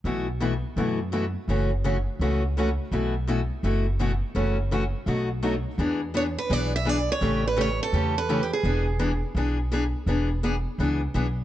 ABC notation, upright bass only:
X:1
M:4/4
L:1/8
Q:"Swing" 1/4=168
K:Emix
V:1 name="Upright bass" clef=bass
B,,,4 F,,4 | F,,,4 C,,4 | B,,,4 F,,,4 | F,,,4 B,,,4 |
E,,4 B,,,4 | A,,,4 E,,4 | E,,,4 B,,,4 | E,,,4 C,,2 B,,,2 |]